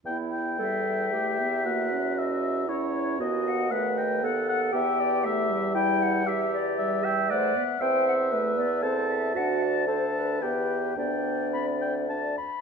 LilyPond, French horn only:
\new Staff \with { instrumentName = "French horn" } { \time 3/4 \key e \minor \tempo 4 = 116 b4 g4 a8 b8 | ais8 cis'4. cis'4 | b4 a4 b4 | b4 a8 g4.~ |
g8 r8 g4 a8 b8 | c'4 a8 b8 c'4 | d'4 d'4 b4 | b4 c'4 d'8 r8 | }